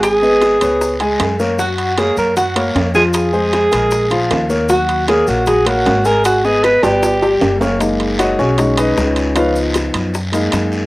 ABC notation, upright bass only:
X:1
M:4/4
L:1/8
Q:1/4=154
K:F#
V:1 name="Upright bass" clef=bass
G,,,3 C,,3 F,,2- | F,,3 F,,3 E,,2- | E,,3 A,,,3 D,,2- | D,,3 A,,,3 G,,,2- |
G,,,3 =G,,,3 F,,,2- | F,,,3 B,,,3 C,,2- | C,,3 F,,3 F,,2 |]